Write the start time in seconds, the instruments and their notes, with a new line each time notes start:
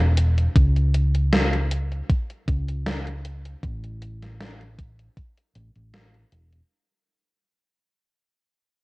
Already playing: fingered electric bass E1
0.17 closed hi-hat
0.38 closed hi-hat
0.56 fingered electric bass C#2, kick, closed hi-hat
0.76 closed hi-hat
0.94 closed hi-hat
1.15 closed hi-hat
1.33 snare, closed hi-hat
1.53 closed hi-hat
1.71 closed hi-hat
1.92 closed hi-hat
2.09 kick, closed hi-hat
2.30 closed hi-hat
2.48 fingered electric bass C#2, kick, closed hi-hat
2.68 closed hi-hat
2.86 snare, closed hi-hat
3.07 closed hi-hat
3.25 closed hi-hat
3.45 closed hi-hat
3.63 fingered electric bass A1, kick, closed hi-hat
3.84 closed hi-hat
4.02 closed hi-hat
4.22 snare, closed hi-hat
4.40 snare, closed hi-hat
4.61 closed hi-hat
4.79 kick, closed hi-hat
4.99 closed hi-hat
5.17 kick, closed hi-hat
5.37 closed hi-hat
5.55 fingered electric bass A1, closed hi-hat
5.76 fingered electric bass A1, closed hi-hat
5.94 snare, closed hi-hat
6.14 closed hi-hat
6.32 fingered electric bass E1, closed hi-hat
6.53 closed hi-hat